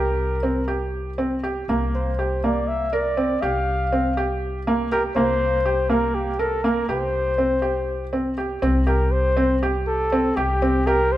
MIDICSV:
0, 0, Header, 1, 4, 480
1, 0, Start_track
1, 0, Tempo, 497512
1, 1622, Time_signature, 7, 3, 24, 8
1, 10780, End_track
2, 0, Start_track
2, 0, Title_t, "Flugelhorn"
2, 0, Program_c, 0, 56
2, 0, Note_on_c, 0, 70, 65
2, 886, Note_off_c, 0, 70, 0
2, 1880, Note_on_c, 0, 72, 57
2, 2364, Note_on_c, 0, 74, 65
2, 2378, Note_off_c, 0, 72, 0
2, 2585, Note_on_c, 0, 76, 70
2, 2599, Note_off_c, 0, 74, 0
2, 2830, Note_on_c, 0, 74, 69
2, 2844, Note_off_c, 0, 76, 0
2, 3297, Note_on_c, 0, 77, 77
2, 3311, Note_off_c, 0, 74, 0
2, 4259, Note_off_c, 0, 77, 0
2, 4747, Note_on_c, 0, 70, 79
2, 4853, Note_off_c, 0, 70, 0
2, 4979, Note_on_c, 0, 72, 92
2, 5691, Note_on_c, 0, 70, 77
2, 5706, Note_off_c, 0, 72, 0
2, 5929, Note_on_c, 0, 67, 64
2, 5944, Note_off_c, 0, 70, 0
2, 6171, Note_on_c, 0, 69, 71
2, 6185, Note_off_c, 0, 67, 0
2, 6399, Note_on_c, 0, 70, 68
2, 6414, Note_off_c, 0, 69, 0
2, 6641, Note_off_c, 0, 70, 0
2, 6651, Note_on_c, 0, 72, 76
2, 7807, Note_off_c, 0, 72, 0
2, 8567, Note_on_c, 0, 70, 73
2, 8796, Note_on_c, 0, 72, 87
2, 8810, Note_off_c, 0, 70, 0
2, 9282, Note_off_c, 0, 72, 0
2, 9529, Note_on_c, 0, 69, 74
2, 9996, Note_on_c, 0, 67, 78
2, 10011, Note_off_c, 0, 69, 0
2, 10487, Note_on_c, 0, 70, 86
2, 10501, Note_off_c, 0, 67, 0
2, 10731, Note_on_c, 0, 72, 89
2, 10746, Note_off_c, 0, 70, 0
2, 10780, Note_off_c, 0, 72, 0
2, 10780, End_track
3, 0, Start_track
3, 0, Title_t, "Felt piano"
3, 0, Program_c, 1, 0
3, 0, Note_on_c, 1, 67, 66
3, 329, Note_off_c, 1, 67, 0
3, 415, Note_on_c, 1, 60, 57
3, 611, Note_off_c, 1, 60, 0
3, 653, Note_on_c, 1, 67, 57
3, 1050, Note_off_c, 1, 67, 0
3, 1139, Note_on_c, 1, 60, 60
3, 1338, Note_off_c, 1, 60, 0
3, 1384, Note_on_c, 1, 67, 57
3, 1581, Note_off_c, 1, 67, 0
3, 1631, Note_on_c, 1, 58, 60
3, 2025, Note_off_c, 1, 58, 0
3, 2111, Note_on_c, 1, 67, 55
3, 2306, Note_off_c, 1, 67, 0
3, 2352, Note_on_c, 1, 58, 58
3, 2744, Note_off_c, 1, 58, 0
3, 2824, Note_on_c, 1, 70, 64
3, 3021, Note_off_c, 1, 70, 0
3, 3061, Note_on_c, 1, 60, 61
3, 3259, Note_off_c, 1, 60, 0
3, 3303, Note_on_c, 1, 67, 66
3, 3697, Note_off_c, 1, 67, 0
3, 3786, Note_on_c, 1, 60, 58
3, 3982, Note_off_c, 1, 60, 0
3, 4025, Note_on_c, 1, 67, 65
3, 4419, Note_off_c, 1, 67, 0
3, 4508, Note_on_c, 1, 58, 69
3, 4702, Note_off_c, 1, 58, 0
3, 4746, Note_on_c, 1, 67, 67
3, 4940, Note_off_c, 1, 67, 0
3, 4978, Note_on_c, 1, 58, 72
3, 5370, Note_off_c, 1, 58, 0
3, 5456, Note_on_c, 1, 67, 57
3, 5651, Note_off_c, 1, 67, 0
3, 5688, Note_on_c, 1, 58, 65
3, 6081, Note_off_c, 1, 58, 0
3, 6168, Note_on_c, 1, 70, 63
3, 6364, Note_off_c, 1, 70, 0
3, 6407, Note_on_c, 1, 58, 65
3, 6603, Note_off_c, 1, 58, 0
3, 6646, Note_on_c, 1, 67, 68
3, 7038, Note_off_c, 1, 67, 0
3, 7121, Note_on_c, 1, 60, 55
3, 7318, Note_off_c, 1, 60, 0
3, 7352, Note_on_c, 1, 67, 55
3, 7752, Note_off_c, 1, 67, 0
3, 7841, Note_on_c, 1, 60, 61
3, 8041, Note_off_c, 1, 60, 0
3, 8082, Note_on_c, 1, 67, 56
3, 8281, Note_off_c, 1, 67, 0
3, 8318, Note_on_c, 1, 60, 72
3, 8519, Note_off_c, 1, 60, 0
3, 8555, Note_on_c, 1, 67, 59
3, 8955, Note_off_c, 1, 67, 0
3, 9037, Note_on_c, 1, 60, 71
3, 9239, Note_off_c, 1, 60, 0
3, 9287, Note_on_c, 1, 67, 64
3, 9683, Note_off_c, 1, 67, 0
3, 9767, Note_on_c, 1, 60, 67
3, 9965, Note_off_c, 1, 60, 0
3, 10004, Note_on_c, 1, 67, 73
3, 10203, Note_off_c, 1, 67, 0
3, 10247, Note_on_c, 1, 60, 62
3, 10445, Note_off_c, 1, 60, 0
3, 10487, Note_on_c, 1, 67, 65
3, 10780, Note_off_c, 1, 67, 0
3, 10780, End_track
4, 0, Start_track
4, 0, Title_t, "Upright bass"
4, 0, Program_c, 2, 32
4, 0, Note_on_c, 2, 36, 65
4, 1587, Note_off_c, 2, 36, 0
4, 1623, Note_on_c, 2, 36, 60
4, 3270, Note_off_c, 2, 36, 0
4, 3304, Note_on_c, 2, 36, 64
4, 4947, Note_off_c, 2, 36, 0
4, 4973, Note_on_c, 2, 36, 64
4, 6608, Note_off_c, 2, 36, 0
4, 6641, Note_on_c, 2, 36, 59
4, 8290, Note_off_c, 2, 36, 0
4, 8322, Note_on_c, 2, 36, 72
4, 9973, Note_off_c, 2, 36, 0
4, 10004, Note_on_c, 2, 36, 70
4, 10780, Note_off_c, 2, 36, 0
4, 10780, End_track
0, 0, End_of_file